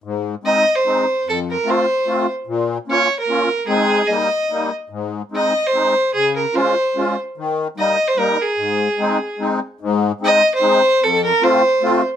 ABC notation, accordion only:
X:1
M:3/4
L:1/8
Q:"Swing" 1/4=148
K:Ab
V:1 name="Accordion"
A,,2 [A,CE] z [A,CE] z | F,,2 [=A,CF] z [A,CF] z | B,,2 [B,DF] z [B,DF] z | [A,CE]2 [G,B,E] z [G,B,E] z |
A,,2 [A,CE] z [A,CE] z | D,2 [A,DF] z [A,DF] z | E,2 [G,B,E] z [G,B,E] z | A,,2 [A,CE] z [A,CE] z |
A,,2 [A,CE] z [A,CE] z | F,,2 [=A,CF] z [A,CF] z |]